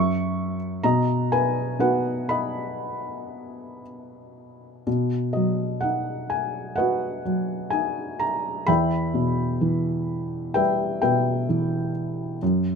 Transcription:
0, 0, Header, 1, 2, 480
1, 0, Start_track
1, 0, Key_signature, 5, "major"
1, 0, Tempo, 949367
1, 420, Time_signature, 4, 2, 24, 8
1, 904, Tempo, 1027397
1, 2344, Tempo, 964630
1, 2824, Tempo, 940439
1, 6355, End_track
2, 0, Start_track
2, 0, Title_t, "Felt piano"
2, 0, Program_c, 0, 0
2, 0, Note_on_c, 0, 42, 56
2, 0, Note_on_c, 0, 76, 64
2, 0, Note_on_c, 0, 85, 85
2, 43, Control_c, 0, 64, 127
2, 285, Note_off_c, 0, 76, 0
2, 285, Note_off_c, 0, 85, 0
2, 405, Note_off_c, 0, 42, 0
2, 422, Note_on_c, 0, 82, 78
2, 425, Note_on_c, 0, 47, 60
2, 426, Control_c, 0, 64, 0
2, 430, Note_on_c, 0, 75, 63
2, 505, Control_c, 0, 64, 127
2, 649, Note_off_c, 0, 75, 0
2, 668, Note_on_c, 0, 80, 73
2, 669, Note_off_c, 0, 82, 0
2, 671, Note_on_c, 0, 71, 56
2, 892, Note_off_c, 0, 71, 0
2, 907, Note_on_c, 0, 59, 40
2, 908, Note_on_c, 0, 63, 37
2, 910, Note_on_c, 0, 66, 46
2, 911, Note_on_c, 0, 78, 68
2, 914, Note_off_c, 0, 80, 0
2, 914, Note_on_c, 0, 71, 52
2, 1123, Note_off_c, 0, 71, 0
2, 1138, Note_on_c, 0, 83, 70
2, 1145, Note_off_c, 0, 78, 0
2, 1145, Note_on_c, 0, 75, 57
2, 1852, Note_off_c, 0, 83, 0
2, 1855, Note_off_c, 0, 75, 0
2, 2326, Note_off_c, 0, 47, 0
2, 2326, Note_off_c, 0, 59, 0
2, 2326, Note_off_c, 0, 63, 0
2, 2327, Note_off_c, 0, 66, 0
2, 2343, Note_on_c, 0, 47, 50
2, 2350, Control_c, 0, 64, 0
2, 2447, Control_c, 0, 64, 127
2, 2573, Note_on_c, 0, 75, 52
2, 2586, Note_on_c, 0, 54, 39
2, 2810, Note_on_c, 0, 78, 59
2, 2822, Note_on_c, 0, 63, 42
2, 2826, Note_off_c, 0, 75, 0
2, 3060, Note_on_c, 0, 80, 66
2, 3069, Note_off_c, 0, 78, 0
2, 3294, Note_on_c, 0, 78, 69
2, 3304, Note_on_c, 0, 71, 48
2, 3305, Note_on_c, 0, 75, 48
2, 3311, Note_off_c, 0, 80, 0
2, 3312, Note_on_c, 0, 66, 47
2, 3529, Note_off_c, 0, 54, 0
2, 3548, Note_on_c, 0, 54, 42
2, 3769, Note_off_c, 0, 63, 0
2, 3778, Note_on_c, 0, 80, 73
2, 3790, Note_on_c, 0, 63, 42
2, 3798, Note_off_c, 0, 78, 0
2, 4029, Note_on_c, 0, 82, 75
2, 4035, Note_off_c, 0, 80, 0
2, 4252, Note_off_c, 0, 71, 0
2, 4253, Note_off_c, 0, 75, 0
2, 4254, Note_off_c, 0, 47, 0
2, 4255, Note_off_c, 0, 54, 0
2, 4256, Note_off_c, 0, 66, 0
2, 4260, Note_off_c, 0, 63, 0
2, 4268, Note_on_c, 0, 83, 86
2, 4275, Note_on_c, 0, 79, 57
2, 4276, Note_on_c, 0, 40, 53
2, 4278, Note_on_c, 0, 76, 61
2, 4280, Note_off_c, 0, 82, 0
2, 4282, Control_c, 0, 64, 0
2, 4381, Control_c, 0, 64, 127
2, 4512, Note_on_c, 0, 47, 46
2, 4752, Note_on_c, 0, 52, 48
2, 5208, Note_off_c, 0, 79, 0
2, 5209, Note_off_c, 0, 76, 0
2, 5227, Note_on_c, 0, 79, 73
2, 5231, Note_on_c, 0, 55, 47
2, 5232, Note_on_c, 0, 71, 52
2, 5236, Note_on_c, 0, 76, 55
2, 5254, Note_off_c, 0, 83, 0
2, 5448, Note_off_c, 0, 47, 0
2, 5452, Note_off_c, 0, 79, 0
2, 5466, Note_off_c, 0, 71, 0
2, 5468, Note_on_c, 0, 79, 72
2, 5469, Note_off_c, 0, 76, 0
2, 5474, Note_on_c, 0, 71, 49
2, 5475, Note_on_c, 0, 47, 45
2, 5476, Note_on_c, 0, 76, 49
2, 5690, Note_off_c, 0, 52, 0
2, 5711, Note_on_c, 0, 52, 44
2, 5925, Note_off_c, 0, 79, 0
2, 6163, Note_off_c, 0, 40, 0
2, 6164, Note_off_c, 0, 55, 0
2, 6165, Note_off_c, 0, 47, 0
2, 6165, Note_off_c, 0, 71, 0
2, 6166, Note_off_c, 0, 76, 0
2, 6170, Note_off_c, 0, 52, 0
2, 6188, Note_on_c, 0, 42, 59
2, 6190, Control_c, 0, 64, 0
2, 6282, Control_c, 0, 64, 127
2, 6355, Note_off_c, 0, 42, 0
2, 6355, End_track
0, 0, End_of_file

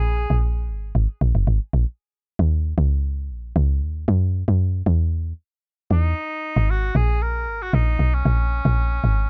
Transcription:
0, 0, Header, 1, 3, 480
1, 0, Start_track
1, 0, Key_signature, -6, "minor"
1, 0, Tempo, 521739
1, 1834, Time_signature, 4, 2, 24, 8
1, 8555, End_track
2, 0, Start_track
2, 0, Title_t, "Cor anglais"
2, 0, Program_c, 0, 69
2, 0, Note_on_c, 0, 68, 106
2, 400, Note_off_c, 0, 68, 0
2, 5447, Note_on_c, 0, 63, 99
2, 6169, Note_on_c, 0, 66, 109
2, 6183, Note_off_c, 0, 63, 0
2, 6405, Note_on_c, 0, 68, 105
2, 6419, Note_off_c, 0, 66, 0
2, 6645, Note_on_c, 0, 70, 113
2, 6659, Note_off_c, 0, 68, 0
2, 7013, Note_on_c, 0, 66, 100
2, 7027, Note_off_c, 0, 70, 0
2, 7128, Note_on_c, 0, 63, 102
2, 7142, Note_off_c, 0, 66, 0
2, 7494, Note_on_c, 0, 61, 98
2, 7508, Note_off_c, 0, 63, 0
2, 8555, Note_off_c, 0, 61, 0
2, 8555, End_track
3, 0, Start_track
3, 0, Title_t, "Log drum bass"
3, 0, Program_c, 1, 39
3, 0, Note_on_c, 1, 34, 114
3, 241, Note_off_c, 1, 34, 0
3, 278, Note_on_c, 1, 34, 95
3, 634, Note_on_c, 1, 32, 104
3, 648, Note_off_c, 1, 34, 0
3, 849, Note_off_c, 1, 32, 0
3, 875, Note_on_c, 1, 32, 94
3, 986, Note_off_c, 1, 32, 0
3, 1116, Note_on_c, 1, 34, 93
3, 1227, Note_off_c, 1, 34, 0
3, 1241, Note_on_c, 1, 30, 88
3, 1343, Note_off_c, 1, 30, 0
3, 1355, Note_on_c, 1, 32, 92
3, 1466, Note_off_c, 1, 32, 0
3, 1595, Note_on_c, 1, 34, 86
3, 1707, Note_off_c, 1, 34, 0
3, 2201, Note_on_c, 1, 39, 95
3, 2519, Note_off_c, 1, 39, 0
3, 2554, Note_on_c, 1, 37, 101
3, 3033, Note_on_c, 1, 34, 97
3, 3047, Note_off_c, 1, 37, 0
3, 3249, Note_off_c, 1, 34, 0
3, 3273, Note_on_c, 1, 37, 106
3, 3516, Note_on_c, 1, 39, 88
3, 3529, Note_off_c, 1, 37, 0
3, 3730, Note_off_c, 1, 39, 0
3, 3754, Note_on_c, 1, 42, 108
3, 4082, Note_off_c, 1, 42, 0
3, 4122, Note_on_c, 1, 42, 97
3, 4439, Note_off_c, 1, 42, 0
3, 4474, Note_on_c, 1, 40, 103
3, 4905, Note_off_c, 1, 40, 0
3, 5434, Note_on_c, 1, 40, 92
3, 5649, Note_off_c, 1, 40, 0
3, 6040, Note_on_c, 1, 32, 100
3, 6358, Note_off_c, 1, 32, 0
3, 6394, Note_on_c, 1, 34, 107
3, 6875, Note_on_c, 1, 32, 86
3, 6889, Note_off_c, 1, 34, 0
3, 7090, Note_off_c, 1, 32, 0
3, 7115, Note_on_c, 1, 34, 108
3, 7330, Note_off_c, 1, 34, 0
3, 7353, Note_on_c, 1, 35, 87
3, 7569, Note_off_c, 1, 35, 0
3, 7594, Note_on_c, 1, 34, 110
3, 7922, Note_off_c, 1, 34, 0
3, 7960, Note_on_c, 1, 34, 115
3, 8278, Note_off_c, 1, 34, 0
3, 8315, Note_on_c, 1, 32, 104
3, 8530, Note_off_c, 1, 32, 0
3, 8555, End_track
0, 0, End_of_file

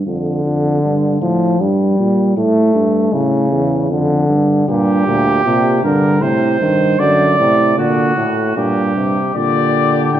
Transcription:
0, 0, Header, 1, 5, 480
1, 0, Start_track
1, 0, Key_signature, -2, "minor"
1, 0, Tempo, 769231
1, 39, Time_signature, 3, 2, 24, 8
1, 3879, Tempo, 783290
1, 6319, End_track
2, 0, Start_track
2, 0, Title_t, "Trumpet"
2, 0, Program_c, 0, 56
2, 5801, Note_on_c, 0, 74, 66
2, 6256, Note_off_c, 0, 74, 0
2, 6280, Note_on_c, 0, 79, 64
2, 6319, Note_off_c, 0, 79, 0
2, 6319, End_track
3, 0, Start_track
3, 0, Title_t, "Flugelhorn"
3, 0, Program_c, 1, 56
3, 2923, Note_on_c, 1, 67, 105
3, 3617, Note_off_c, 1, 67, 0
3, 3644, Note_on_c, 1, 70, 78
3, 3879, Note_on_c, 1, 72, 88
3, 3888, Note_off_c, 1, 70, 0
3, 4355, Note_on_c, 1, 74, 106
3, 4364, Note_off_c, 1, 72, 0
3, 4836, Note_off_c, 1, 74, 0
3, 4841, Note_on_c, 1, 66, 88
3, 5310, Note_off_c, 1, 66, 0
3, 5321, Note_on_c, 1, 67, 86
3, 5792, Note_off_c, 1, 67, 0
3, 5807, Note_on_c, 1, 67, 74
3, 6319, Note_off_c, 1, 67, 0
3, 6319, End_track
4, 0, Start_track
4, 0, Title_t, "Euphonium"
4, 0, Program_c, 2, 58
4, 38, Note_on_c, 2, 50, 85
4, 735, Note_off_c, 2, 50, 0
4, 759, Note_on_c, 2, 53, 79
4, 1003, Note_on_c, 2, 55, 83
4, 1012, Note_off_c, 2, 53, 0
4, 1477, Note_off_c, 2, 55, 0
4, 1481, Note_on_c, 2, 57, 90
4, 1957, Note_on_c, 2, 49, 88
4, 1966, Note_off_c, 2, 57, 0
4, 2435, Note_off_c, 2, 49, 0
4, 2440, Note_on_c, 2, 50, 84
4, 2910, Note_off_c, 2, 50, 0
4, 2926, Note_on_c, 2, 46, 75
4, 3158, Note_off_c, 2, 46, 0
4, 3165, Note_on_c, 2, 46, 69
4, 3397, Note_off_c, 2, 46, 0
4, 3403, Note_on_c, 2, 48, 78
4, 3636, Note_off_c, 2, 48, 0
4, 3649, Note_on_c, 2, 50, 75
4, 3880, Note_off_c, 2, 50, 0
4, 3887, Note_on_c, 2, 48, 70
4, 4116, Note_off_c, 2, 48, 0
4, 4119, Note_on_c, 2, 51, 69
4, 4352, Note_off_c, 2, 51, 0
4, 4355, Note_on_c, 2, 50, 71
4, 4591, Note_off_c, 2, 50, 0
4, 4596, Note_on_c, 2, 48, 69
4, 4838, Note_on_c, 2, 50, 69
4, 4847, Note_off_c, 2, 48, 0
4, 5074, Note_off_c, 2, 50, 0
4, 5077, Note_on_c, 2, 45, 69
4, 5313, Note_off_c, 2, 45, 0
4, 5316, Note_on_c, 2, 46, 69
4, 5553, Note_off_c, 2, 46, 0
4, 5563, Note_on_c, 2, 48, 64
4, 5797, Note_off_c, 2, 48, 0
4, 5801, Note_on_c, 2, 50, 71
4, 6319, Note_off_c, 2, 50, 0
4, 6319, End_track
5, 0, Start_track
5, 0, Title_t, "Tuba"
5, 0, Program_c, 3, 58
5, 39, Note_on_c, 3, 41, 66
5, 275, Note_off_c, 3, 41, 0
5, 279, Note_on_c, 3, 41, 61
5, 515, Note_off_c, 3, 41, 0
5, 521, Note_on_c, 3, 43, 66
5, 754, Note_off_c, 3, 43, 0
5, 758, Note_on_c, 3, 45, 65
5, 995, Note_off_c, 3, 45, 0
5, 999, Note_on_c, 3, 43, 67
5, 1234, Note_off_c, 3, 43, 0
5, 1242, Note_on_c, 3, 46, 67
5, 1470, Note_off_c, 3, 46, 0
5, 1474, Note_on_c, 3, 45, 74
5, 1709, Note_off_c, 3, 45, 0
5, 1715, Note_on_c, 3, 43, 68
5, 1949, Note_off_c, 3, 43, 0
5, 1954, Note_on_c, 3, 45, 68
5, 2189, Note_off_c, 3, 45, 0
5, 2194, Note_on_c, 3, 40, 72
5, 2435, Note_on_c, 3, 41, 69
5, 2445, Note_off_c, 3, 40, 0
5, 2674, Note_off_c, 3, 41, 0
5, 2677, Note_on_c, 3, 43, 73
5, 2913, Note_off_c, 3, 43, 0
5, 2920, Note_on_c, 3, 43, 83
5, 3155, Note_off_c, 3, 43, 0
5, 3161, Note_on_c, 3, 38, 69
5, 3395, Note_off_c, 3, 38, 0
5, 3398, Note_on_c, 3, 46, 75
5, 3633, Note_off_c, 3, 46, 0
5, 3639, Note_on_c, 3, 43, 74
5, 3881, Note_on_c, 3, 45, 74
5, 3890, Note_off_c, 3, 43, 0
5, 4113, Note_off_c, 3, 45, 0
5, 4117, Note_on_c, 3, 43, 70
5, 4351, Note_off_c, 3, 43, 0
5, 4355, Note_on_c, 3, 42, 79
5, 4591, Note_off_c, 3, 42, 0
5, 4596, Note_on_c, 3, 45, 72
5, 4830, Note_off_c, 3, 45, 0
5, 4834, Note_on_c, 3, 46, 74
5, 5070, Note_off_c, 3, 46, 0
5, 5075, Note_on_c, 3, 45, 67
5, 5312, Note_off_c, 3, 45, 0
5, 5319, Note_on_c, 3, 43, 64
5, 5695, Note_off_c, 3, 43, 0
5, 5799, Note_on_c, 3, 46, 68
5, 6255, Note_off_c, 3, 46, 0
5, 6279, Note_on_c, 3, 45, 62
5, 6319, Note_off_c, 3, 45, 0
5, 6319, End_track
0, 0, End_of_file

